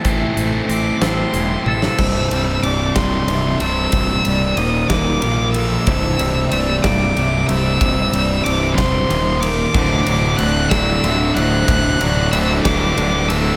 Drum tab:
CC |------------|x-----------|------------|------------|
RD |------------|--x-x-x-x-x-|x-x-x-x-x-x-|x-x-x-x-x-x-|
HH |x-x-x-x-x---|------------|------------|------------|
SD |------o----o|------o-----|------o-----|------o-----|
T1 |----------o-|------------|------------|------------|
BD |o-----------|o-----o-----|o-----o-----|o-----o-----|

CC |------------|x-----------|------------|
RD |x-x-x-x-x-x-|--x-x-x-x-x-|x-x-x-x-x-x-|
HH |------------|------------|------------|
SD |------o-----|------o-----|------o-----|
T1 |------------|------------|------------|
BD |o-----o-----|o-----o-----|o-----o-----|